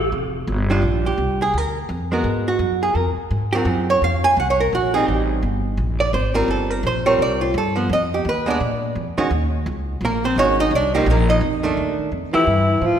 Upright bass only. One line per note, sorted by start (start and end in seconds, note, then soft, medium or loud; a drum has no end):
0.00 0.11 A1 loud
0.12 0.46 F1 medium
0.47 0.81 G1 medium
0.82 1.17 A#1 medium
1.18 1.52 C2 medium
1.54 1.88 D2 medium
1.89 2.23 F2 medium
2.24 2.58 G#2 medium
2.59 2.94 F#2 medium
2.95 3.15 F2 medium
3.17 muted upright bass stroke soft
3.31 3.64 G#2 medium
3.65 4.00 F#2 loud
4.02 4.36 F2 medium
4.37 4.71 C2 loud
4.73 5.06 A#1 medium
5.08 5.42 A1 medium
5.43 5.77 G1 medium
5.77 6.12 A#1 medium
6.13 6.47 G#1 medium
6.48 6.82 G1 medium
6.83 7.17 A#1 medium
7.19 7.53 C2 medium
7.54 7.88 G2 loud
7.89 8.23 F2 loud
8.25 8.59 D#2 medium
8.60 8.94 A#2 medium
8.95 9.16 F2 medium
9.18 muted upright bass stroke soft
9.31 9.64 D#2 medium
9.66 10.00 C#2 loud
10.01 10.35 A#1 medium
10.36 10.70 G#1 medium
10.71 11.05 C2 medium
11.06 11.40 A#1 loud
11.41 11.75 F2 loud
11.77 11.97 D#2 medium
11.98 muted upright bass stroke soft
12.12 12.32 F2 medium
12.35 muted upright bass stroke soft
12.47 12.81 G2 medium
12.81 12.99 A2 medium